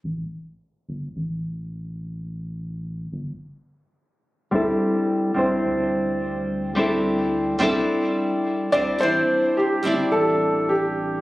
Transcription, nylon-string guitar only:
\new Staff \with { instrumentName = "Nylon-string guitar" } { \time 4/4 \key a \minor \tempo 4 = 107 r1 | r1 | <g c' d' e' a'>4. <g c' d' e' c''>2~ <g c' d' e' c''>8 | <g c' d' e' a'>4. <g c' d' e' a'>2 <g c' d' e' c''>8 |
<g c' d' e' c''>4. <g c' d' e' d''>2~ <g c' d' e' d''>8 | }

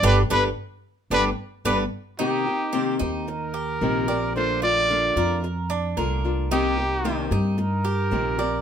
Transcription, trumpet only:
\new Staff \with { instrumentName = "Trumpet" } { \time 4/4 \key g \phrygian \tempo 4 = 111 b'8 b'8 r4 b'8 r8 b'8 r8 | \key c \minor g'4. r8 bes'2 | c''8 d''4. r2 | g'4. r8 bes'2 | }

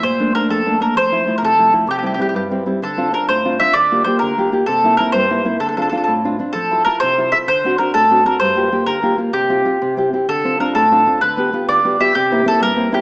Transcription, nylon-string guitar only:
\new Staff \with { instrumentName = "Nylon-string guitar" } { \time 6/8 \key d \minor \tempo 4. = 129 bes,8 <a bes d'>8 <a bes d'>8 f,8 <a bes d'>8 <a bes d'>8 | f,8 <f a e'>8 <f a e'>8 c8 <f a e'>8 <f a e'>8 | c8 <g c' e'>8 <g c' e'>8 g,8 <g c' e'>8 <g c' e'>8 | d8 <c' d' f'>8 <c' d' f'>8 a,8 <c' d' f'>8 <c' d' f'>8 |
d8 <bes f' g'>8 <bes f' g'>8 d8 <bes f' g'>8 <bes f' g'>8 | c8 <bes c' e'>8 <bes c' e'>8 g,8 <bes c' e'>8 <bes c' e'>8 | d8 <c' d' f'>8 <c' d' f'>8 a,8 <c' d' f'>8 <c' d' f'>8 | f8 <e' f' a'>8 <e' f' a'>8 c8 <e' f' a'>8 <e' f' a'>8 |
d8 <c' d' fis'>8 <c' d' fis'>8 a,8 <c' d' fis'>8 <c' d' fis'>8 | g,8 <bes f' g'>8 <bes f' g'>8 d8 <bes f' g'>8 <bes f' g'>8 | c8 <c' f' g'>8 <c' f' g'>8 c8 <c' e' g'>8 <c' e' g'>8 | d8 <c' d' f'>8 <c' d' f'>8 a,8 <c' d' f'>8 <c' d' f'>8 |
d8 <b f' g'>8 <b f' g'>8 d8 <b f' g'>8 <b f' g'>8 | c8 <bes c' e'>8 <bes c' e'>8 g,8 <bes c' e'>8 <bes c' e'>8 | }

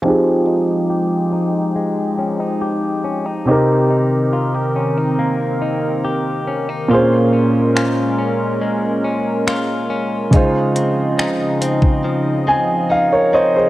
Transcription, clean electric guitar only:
\new Staff \with { instrumentName = "Clean electric guitar" } { \time 4/4 \key f \minor \tempo 4 = 70 <f g'>8 ees'8 g'8 ees'8 aes8 des'16 ees'16 g'8 des'16 ees'16 | <c g'>8 ees'8 f'16 g'16 des'16 ees'16 bes8 ees'8 g'8 des'16 ees'16 | <bes, f'>8 des'8 f'8 des'8 aes8 des'8 f'8 des'8 | <des ees'>8 c'8 ees'8 c'8 f8 c'8 ees'8 c'8 | }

